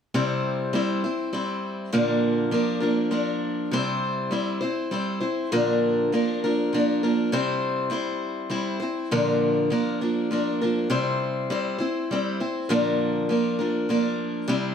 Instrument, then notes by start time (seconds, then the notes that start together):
steel-string acoustic guitar
0.14 C3 G3 C4 E4 C5
0.73 G3 C4 E4 C5
1.04 C4 E4 C5
1.33 G3 C4 E4 C5
1.92 A#2 D3 F3 A#3 D4 A#4
2.51 F3 A#3 D4 A#4
2.80 F3 A#3 D4 A#4
3.11 F3 A#3 D4 A#4
3.71 C3 G3 C4 E4 C5
4.31 G3 C4 E4 C5
4.61 C4 E4 C5
4.91 G3 C4 E4 C5
5.20 C4 E4 C5
5.52 A#2 D3 F3 A#3 D4 A#4
6.12 F3 A#3 D4 A#4
6.44 F3 A#3 D4 A#4
6.73 F3 A#3 D4 A#4
7.03 F3 A#3 D4 A#4
7.32 C3 G3 C4 E4 C5
7.90 G3 C4 E4 C5
8.50 G3 C4 E4 C5
8.80 C4 E4 C5
9.11 A#2 D3 F3 A#3 D4 A#4
9.70 F3 A#3 D4 A#4
10.01 F3 A#3 D4 A#4
10.31 F3 A#3 D4 A#4
10.61 F3 A#3 D4 A#4
10.90 C3 G3 C4 E4 C5
11.50 G3 C4 E4 C5
11.78 C4 E4 C5
12.11 G3 C4 E4 C5
12.40 C4 E4 C5
12.69 A#2 D3 F3 A#3 D4 A#4
13.29 F3 A#3 D4 A#4
13.59 F3 A#3 D4 A#4
13.89 F3 A#3 D4 A#4
14.48 C3 G3 C4 E4 C5